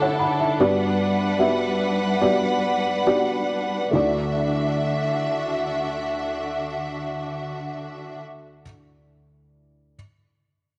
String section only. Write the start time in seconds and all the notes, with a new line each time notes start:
Already playing: D3 D4 E4 A4
0.60 G3 B4 F#5
3.94 D3 D4 F#4 E5